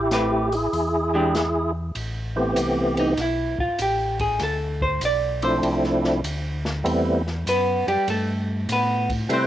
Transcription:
0.00 0.69 A1 medium
0.00 0.49 E4 medium
0.00 0.54 G4 medium
0.11 0.49 A3 medium
0.11 0.49 C4 medium
0.11 0.49 G4 medium
0.11 0.49 B4 medium
0.11 snare medium
0.11 closed hi-hat medium
0.52 1.72 E4 medium
0.52 1.71 G#4 medium
0.52 open hi-hat soft
0.73 1.92 E2 medium
0.73 open hi-hat soft
1.14 1.32 E3 medium
1.14 1.33 G#3 medium
1.14 1.33 D4 medium
1.14 1.33 G4 medium
1.35 snare medium
1.35 closed hi-hat medium
1.95 2.55 A1 medium
1.95 ride medium
2.36 3.14 E3 medium
2.36 3.14 A3 medium
2.36 3.14 B3 medium
2.36 3.14 C4 medium
2.36 3.14 G4 medium
2.56 3.16 C2 medium
2.56 hi-hat pedal medium
2.56 ride medium
2.97 3.19 D#4 medium
2.97 ride soft
3.17 3.56 B1 medium
3.17 snare soft
3.17 ride medium
3.21 3.60 E4 medium
3.58 3.69 B1 soft
3.58 3.80 F4 medium
3.58 kick medium
3.79 4.39 A1 medium
3.79 4.20 G4 medium
3.79 hi-hat pedal medium
3.79 ride medium
4.19 4.40 G#4 medium
4.19 kick soft
4.19 ride soft
4.40 5.00 D2 medium
4.40 4.82 A4 medium
4.40 snare soft
4.40 ride medium
4.81 5.02 C5 medium
4.81 kick medium
5.01 5.61 B1 medium
5.01 5.43 D5 loud
5.01 hi-hat pedal soft
5.01 ride medium
5.42 6.20 F3 medium
5.42 6.20 A3 medium
5.42 6.20 C4 medium
5.42 6.21 D4 medium
5.42 6.21 E4 medium
5.42 6.83 C5 medium
5.42 ride soft
5.62 6.22 C2 medium
5.62 ride medium
5.84 snare soft
6.04 snare soft
6.23 6.83 D2 medium
6.23 hi-hat pedal medium
6.23 ride medium
6.65 snare medium
6.84 7.45 E2 medium
6.84 7.22 G3 medium
6.84 7.22 A3 medium
6.84 7.22 B3 medium
6.84 7.22 C4 medium
6.84 7.22 E4 medium
6.84 ride medium
7.27 snare soft
7.46 7.85 F#2 medium
7.46 7.88 B3 medium
7.46 7.87 B4 medium
7.46 hi-hat pedal medium
7.46 ride medium
7.87 7.97 F#2 soft
7.87 8.08 G3 medium
7.87 8.08 G4 medium
7.87 ride soft
8.07 8.67 G2 medium
8.07 8.66 A3 medium
8.07 8.66 A4 medium
8.07 ride medium
8.69 9.28 A2 medium
8.69 9.10 B3 medium
8.69 9.10 B4 medium
8.69 hi-hat pedal medium
8.69 ride medium
9.09 kick medium
9.09 ride medium
9.29 9.47 C3 medium
9.29 9.47 G3 medium
9.29 9.47 A3 medium
9.29 9.47 E4 medium
9.29 9.47 B4 medium
9.29 9.47 C5 medium
9.29 ride medium
9.33 9.47 C4 medium
9.33 9.47 C5 medium

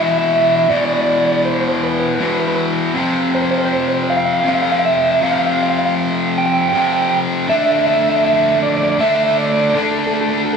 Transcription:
0.00 0.66 E2 medium
0.00 0.66 B2 loud
0.00 0.67 E3 loud
0.00 0.10 E5 loud
0.10 0.18 E5 medium
0.18 0.26 E5 medium
0.26 0.33 E5 medium
0.33 0.40 E5 medium
0.41 0.49 E5 medium
0.49 0.56 E5 medium
0.56 0.64 E5 medium
0.64 0.72 E5 medium
0.69 2.17 E2 loud
0.69 2.18 B2 loud
0.69 2.19 E3 medium
0.69 0.77 D5 loud
0.77 0.85 D5 medium
0.85 0.93 D5 medium
0.93 1.01 D5 medium
1.01 1.09 D5 loud
1.10 1.16 D5 medium
1.16 1.24 D5 medium
1.26 1.32 D5 medium
1.32 1.40 D5 medium
1.45 1.53 C5 medium
1.53 1.60 C5 medium
1.60 1.68 C5 medium
1.68 1.76 C5 medium
1.76 1.83 C5 medium
1.83 1.90 B4 medium
1.90 1.98 B4 medium
2.00 2.08 B4 medium
2.08 2.15 B4 medium
2.15 2.92 E2 medium
2.15 2.23 B4 medium
2.20 2.93 B2 medium
2.20 2.94 E3 medium
2.20 2.31 B4 medium
2.31 2.39 B4 medium
2.40 2.48 B4 medium
2.48 2.55 B4 medium
2.56 2.64 B4 medium
2.94 4.44 F2 medium
2.94 4.44 C3 medium
2.94 4.46 F3 loud
3.35 3.42 C5 loud
3.42 3.50 C5 medium
3.51 3.58 C5 medium
3.58 3.65 C5 medium
3.65 3.73 C5 medium
3.73 3.80 C5 medium
3.81 3.88 C5 medium
3.89 3.94 C5 medium
3.94 4.02 C5 medium
4.04 4.11 C5 medium
4.10 4.17 F5 loud
4.17 4.25 F5 medium
4.25 4.33 F5 loud
4.33 4.40 F5 medium
4.40 4.48 F5 loud
4.44 5.21 F2 medium
4.44 5.19 C3 medium
4.44 5.24 F3 medium
4.48 4.55 F5 medium
4.55 4.62 F5 loud
4.62 4.70 F5 medium
4.72 4.79 F5 medium
4.79 4.85 F5 medium
4.85 4.94 E5 medium
4.95 5.02 E5 medium
5.02 5.11 E5 medium
5.12 5.20 E5 medium
5.21 6.72 F2 medium
5.21 6.71 C3 loud
5.21 6.75 F3 loud
5.21 5.31 F5 loud
5.32 5.39 F5 medium
5.39 5.46 F5 medium
5.46 5.54 F5 medium
5.54 5.62 F5 loud
5.63 5.69 F5 medium
5.70 5.77 F5 medium
5.79 5.85 F5 medium
5.85 5.93 F5 medium
6.38 6.45 G5 loud
6.46 6.53 G5 medium
6.53 6.61 G5 loud
6.61 6.69 G5 loud
6.69 10.22 F2 medium
6.69 6.77 G5 loud
6.74 7.46 C3 medium
6.74 7.49 F3 medium
6.74 6.85 G5 loud
6.86 6.92 G5 loud
6.93 7.01 G5 medium
7.02 7.09 G5 loud
7.09 7.17 G5 medium
7.48 8.97 D3 medium
7.48 8.98 A3 medium
7.48 8.98 D4 loud
7.48 7.56 E5 loud
7.57 7.63 E5 medium
7.64 7.71 E5 loud
7.72 7.78 E5 medium
7.79 7.86 E5 loud
7.87 7.93 E5 medium
7.93 8.01 E5 loud
8.02 8.09 E5 medium
8.09 8.16 E5 medium
8.17 8.24 E5 medium
8.25 8.34 E5 loud
8.34 8.41 E5 medium
8.42 8.49 E5 loud
8.49 8.58 E5 medium
8.63 8.69 D5 loud
8.70 8.76 D5 medium
8.77 8.83 D5 loud
8.83 8.89 D5 medium
8.90 8.97 D5 medium
8.99 9.72 D3 medium
8.99 9.73 A3 loud
8.99 9.74 D4 medium
8.99 9.08 E5 loud
9.08 9.15 E5 medium
9.15 9.23 E5 medium
9.24 9.31 E5 medium
9.31 9.38 E5 medium
9.38 9.46 D5 medium
9.46 9.52 D5 medium
9.52 9.60 D5 medium
9.61 9.69 D5 medium
9.70 9.77 D5 medium
9.74 10.57 D3 medium
9.74 10.57 A3 loud
9.74 10.57 D4 loud
9.74 9.82 A4 loud
9.83 9.90 A4 medium
9.92 9.99 A4 medium
9.99 10.06 A4 medium
10.07 10.14 A4 medium
10.14 10.21 A4 medium
10.21 10.29 A4 medium
10.30 10.38 A4 medium
10.38 10.45 A4 medium
10.46 10.53 A4 medium
10.53 10.57 A4 medium

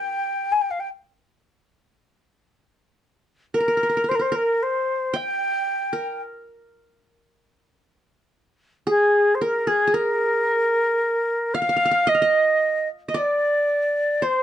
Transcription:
0.00 0.14 A#4 medium
0.00 0.53 G5 medium
0.00 0.66 G5 medium
0.52 0.63 G#5 medium
0.61 0.72 G5 medium
0.71 0.81 F5 medium
0.80 0.88 G5 medium
3.54 3.60 A#4 medium
3.54 4.10 A#4 medium
3.60 3.68 A#4 soft
3.68 3.77 A#4 soft
3.77 3.83 A#4 soft
3.83 3.89 A#4 soft
3.89 3.96 A#4 soft
3.97 4.04 A#4 soft
4.04 4.11 A#4 soft
4.09 4.19 A#4 soft
4.09 4.17 C5 medium
4.15 4.23 A#4 medium
4.19 4.31 A#4 soft
4.19 4.37 C5 medium
4.32 5.45 A#4 medium
4.32 4.64 A#4 medium
4.63 5.18 C5 medium
5.14 5.96 G5 medium
5.14 6.22 G5 medium
5.93 7.06 A#4 medium
8.87 9.67 G#4 medium
8.87 9.36 G#4 medium
9.35 9.44 C5 medium
9.41 9.94 A#4 medium
9.41 9.69 A#4 medium
9.67 9.87 G#4 medium
9.67 9.95 G#4 medium
9.87 11.09 G#4 medium
9.94 11.56 A#4 medium
9.94 11.59 A#4 medium
11.54 11.61 F5 medium
11.54 12.10 F5 medium
11.62 11.69 F5 medium
11.69 11.76 F5 medium
11.77 11.85 F5 medium
11.85 11.91 F5 medium
11.91 12.14 F5 medium
12.07 12.21 D#5 medium
12.07 12.88 D#5 loud
12.15 13.03 F5 medium
12.22 13.08 D#5 medium
13.08 13.18 D#5 medium
13.08 13.20 D#5 medium
13.14 14.24 D5 medium
13.14 14.25 D5 medium
14.22 14.43 C5 medium

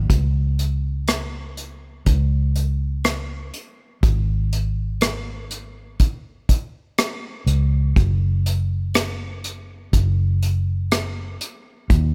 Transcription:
0.10 2.02 C#2 medium
0.10 kick loud
0.10 closed hi-hat medium
0.59 closed hi-hat medium
1.08 cross-stick medium
1.08 closed hi-hat medium
1.57 closed hi-hat medium
2.06 3.50 C#2 medium
2.06 kick medium
2.06 closed hi-hat medium
2.56 closed hi-hat medium
3.04 cross-stick medium
3.04 closed hi-hat medium
3.54 closed hi-hat medium
4.03 7.43 G#1 medium
4.03 kick loud
4.03 closed hi-hat medium
4.53 closed hi-hat medium
5.01 cross-stick loud
5.01 closed hi-hat medium
5.51 closed hi-hat medium
6.00 kick medium
6.00 closed hi-hat medium
6.49 kick medium
6.49 closed hi-hat medium
6.98 cross-stick medium
6.98 closed hi-hat medium
7.47 7.93 C#2 medium
7.47 closed hi-hat medium
7.96 9.89 F#1 medium
7.96 kick loud
7.96 closed hi-hat medium
8.46 closed hi-hat medium
8.94 cross-stick loud
8.94 closed hi-hat medium
9.44 closed hi-hat medium
9.93 11.37 F#1 medium
9.93 kick medium
9.93 closed hi-hat medium
10.43 closed hi-hat medium
10.92 cross-stick medium
10.92 closed hi-hat medium
11.41 closed hi-hat medium
11.90 12.14 D#2 medium
11.90 kick loud
11.90 closed hi-hat medium

